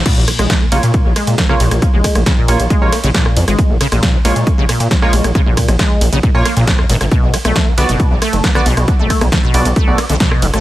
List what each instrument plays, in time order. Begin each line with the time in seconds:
Already playing: ambient pad A#2 A#3
0.06 acid bass A#2, kick, closed hi-hat, crash
0.17 analog synth bass A#1
0.28 acid bass A#3, cross-stick, open hi-hat, ride
0.39 analog synth bass A#1, acid bass G#3, cross-stick, closed hi-hat
0.50 kick, snare, closed hi-hat
0.61 acid bass A#3
0.72 analog synth bass A#1, acid bass C#3, analog polysynth A#3 F4 C#5, open hi-hat, ride
0.83 acid bass A#2, analog synth bass A#2, closed hi-hat
0.94 kick, closed hi-hat
1.05 analog synth bass A#1, acid bass A#3
1.16 acid bass G#3, cross-stick, open hi-hat, ride
1.27 analog synth bass A#2, closed hi-hat
1.38 acid bass A#3, kick, snare, closed hi-hat
1.49 acid bass C#3, analog polysynth A#3 F4 C#5, cross-stick
1.60 analog synth bass A#1, acid bass A#2, open hi-hat, ride
1.71 analog synth bass A#1, cross-stick, closed hi-hat
1.82 acid bass A#3, kick, closed hi-hat
1.93 analog synth bass A#1, acid bass G#3
2.04 kick, cross-stick, open hi-hat, ride
2.15 analog synth bass A#1, acid bass A#3, cross-stick, closed hi-hat
2.26 acid bass C#3, kick, snare, closed hi-hat
2.37 acid bass A#2
2.48 analog synth bass A#1, analog polysynth A#3 F4 C#5, open hi-hat, ride
2.60 analog synth bass A#1, acid bass A#3, closed hi-hat
2.70 acid bass G#3, kick, closed hi-hat
2.82 analog synth bass A#1, analog polysynth A#3 F4 C#5
2.92 acid bass A#3, cross-stick, snare, open hi-hat, ride
3.04 analog synth bass A#1, acid bass C#3, closed hi-hat
3.14 acid bass A#2, kick, snare, closed hi-hat
3.26 cross-stick
3.37 analog synth bass F2, acid bass A#3, open hi-hat, ride
3.48 analog synth bass G#1, acid bass G#3, cross-stick, closed hi-hat
3.59 kick, closed hi-hat
3.70 analog synth bass A#1, acid bass A#3
3.81 acid bass C#3, cross-stick, open hi-hat, ride
3.92 analog synth bass A#1, acid bass A#2, cross-stick, closed hi-hat
4.03 kick, snare, closed hi-hat
4.14 acid bass A#3
4.25 analog synth bass A#1, acid bass G#3, analog polysynth A#3 F4 C#5, open hi-hat, ride
4.36 analog synth bass A#2, closed hi-hat
4.47 acid bass A#3, kick, closed hi-hat
4.58 analog synth bass A#1, acid bass C#3
4.69 acid bass A#2, cross-stick, open hi-hat, ride
4.80 analog synth bass A#2, closed hi-hat
4.91 acid bass A#3, kick, snare, closed hi-hat
5.02 acid bass G#3, analog polysynth A#3 F4 C#5, cross-stick
5.13 analog synth bass A#1, open hi-hat, ride
5.24 analog synth bass A#1, acid bass A#3, cross-stick, closed hi-hat
5.35 acid bass C#3, kick, closed hi-hat
5.46 analog synth bass A#1, acid bass A#2
5.57 kick, cross-stick, open hi-hat, ride
5.68 analog synth bass A#1, acid bass A#3, cross-stick, closed hi-hat
5.79 acid bass G#3, kick, snare, closed hi-hat
6.01 analog synth bass A#1, acid bass A#3, open hi-hat, ride
6.12 analog synth bass A#1, acid bass C#3, closed hi-hat
6.23 acid bass A#2, kick, closed hi-hat
6.35 analog synth bass A#2, analog polysynth A#3 F4 C#5
6.45 acid bass A#3, cross-stick, snare, open hi-hat, ride
6.57 acid bass A#1, analog synth bass A#2, closed hi-hat
6.67 kick, snare, closed hi-hat
6.79 acid bass G#2, cross-stick
6.90 analog synth bass G#1, acid bass A#2, open hi-hat, ride
7.01 analog synth bass G#1, acid bass C3, cross-stick, closed hi-hat
7.12 acid bass B2, kick, closed hi-hat
7.23 analog synth bass B1
7.34 acid bass B3, cross-stick, open hi-hat, ride
7.45 analog synth bass B1, acid bass A3, cross-stick, closed hi-hat
7.56 kick, snare, closed hi-hat
7.67 acid bass B3
7.78 analog synth bass B1, acid bass D3, analog polysynth B3 F#4 D5, open hi-hat, ride
7.89 analog synth bass F#1, acid bass B2, closed hi-hat
8.00 kick, closed hi-hat
8.11 analog synth bass B1, acid bass B3
8.22 acid bass A3, cross-stick, open hi-hat, ride
8.33 analog synth bass F#1, closed hi-hat
8.44 acid bass B3, kick, snare, closed hi-hat
8.55 acid bass D3, analog polysynth B3 F#4 D5, cross-stick
8.66 analog synth bass B1, acid bass B2, open hi-hat, ride
8.77 analog synth bass B1, cross-stick, closed hi-hat
8.88 acid bass B3, kick, closed hi-hat
8.99 analog synth bass B1, acid bass A3
9.10 kick, cross-stick, open hi-hat, ride
9.21 analog synth bass B1, acid bass B3, cross-stick, closed hi-hat
9.32 acid bass D3, kick, snare, closed hi-hat
9.43 acid bass B2
9.54 analog synth bass B1, analog polysynth B3 F#4 D5, open hi-hat, ride
9.65 analog synth bass B1, acid bass B3, closed hi-hat
9.76 acid bass A3, kick, closed hi-hat
9.88 analog synth bass B1, analog polysynth B3 F#4 D5
9.98 acid bass B3, cross-stick, snare, open hi-hat, ride
10.09 analog synth bass B1, acid bass D3, closed hi-hat
10.20 acid bass B2, kick, snare, closed hi-hat
10.31 cross-stick
10.42 analog synth bass F#1, acid bass B3, open hi-hat, ride
10.54 analog synth bass A1, acid bass A3, cross-stick, closed hi-hat